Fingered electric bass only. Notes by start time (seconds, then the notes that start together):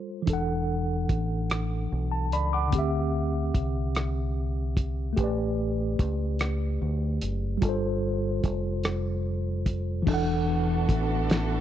0.28 E1
1.10 A1
1.92 B1
2.33 C#2
2.73 D2
3.55 C2
5.18 A1
6.00 C#2
6.82 D2
7.23 F#1
7.62 G1
8.44 F1
10.07 E1
10.90 A1